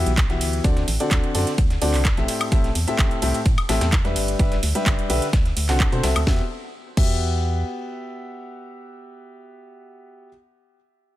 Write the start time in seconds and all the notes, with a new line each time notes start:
Already playing: E3 B3 F#4 G4 E5
0.06 B1, closed hi-hat
0.17 kick, snare, clap, closed hi-hat
0.30 E3 B3 F#4 G4 E5, snare, closed hi-hat
0.41 D2, closed hi-hat, open hi-hat, ride
0.53 closed hi-hat
0.64 D2 D3 C4 F#4 A4 D5, kick, closed hi-hat
0.77 snare, closed hi-hat
0.88 A1, open hi-hat, ride
1.00 D3 C4 F#4 A4 D5, closed hi-hat
1.11 D2, kick, snare, clap, closed hi-hat
1.24 closed hi-hat
1.35 F#2 D3 C4 F#4 A4 D5, closed hi-hat, open hi-hat, ride
1.47 snare, closed hi-hat
1.58 D2, kick, closed hi-hat
1.70 snare, closed hi-hat
1.82 D2 D3 C4 F#4 A4 D5, closed hi-hat, open hi-hat, ride
1.94 C2, snare, clap, open hi-hat
2.05 kick, snare, clap, closed hi-hat
2.17 A1 A2 C4 G4 A4 E5, snare, closed hi-hat
2.28 closed hi-hat, open hi-hat, ride
2.41 closed hi-hat, high woodblock
2.52 A1 A2 C4 G4 A4 E5, kick, closed hi-hat
2.64 snare, closed hi-hat
2.75 E2, closed hi-hat, open hi-hat, ride
2.88 A2 C4 G4 A4 E5, closed hi-hat
2.99 A1, kick, snare, clap, closed hi-hat
3.11 closed hi-hat
3.22 C2 A2 C4 G4 A4 E5, closed hi-hat, open hi-hat, ride
3.34 closed hi-hat
3.46 A2, kick, closed hi-hat
3.58 closed hi-hat, high woodblock
3.69 A1 A2 C4 G4 A4 E5, snare, closed hi-hat, open hi-hat, ride
3.81 E2, snare, closed hi-hat
3.92 kick, snare, clap, closed hi-hat
4.05 G3 D4 G4 B4 E5, snare, closed hi-hat
4.16 G1, closed hi-hat, open hi-hat, ride
4.28 closed hi-hat
4.39 G1 G3 D4 G4 B4 E5, kick, closed hi-hat
4.52 snare, closed hi-hat
4.63 D2, open hi-hat, ride
4.75 G3 D4 G4 B4 E5, closed hi-hat
4.86 G1, kick, snare, clap, closed hi-hat
4.99 closed hi-hat
5.10 B1 D3 D4 G4 B4 E5, closed hi-hat, open hi-hat, ride
5.22 snare, closed hi-hat
5.33 D2, kick, snare, closed hi-hat
5.45 snare, closed hi-hat
5.57 D2, closed hi-hat, open hi-hat, ride
5.69 C2 D3 C4 F#4 A4 F#5, snare, clap, closed hi-hat, open hi-hat
5.80 kick, snare, clap, closed hi-hat
5.92 B2 D3 C4 F#4 A4 C5, closed hi-hat
6.03 C2 C4 F#4 A4 E5, snare, closed hi-hat, open hi-hat, ride
6.16 D2, closed hi-hat, high woodblock
6.27 E2 B3 F#4 G4 E5, kick, snare
6.97 E2 B3 F#4 G4 E5, kick, crash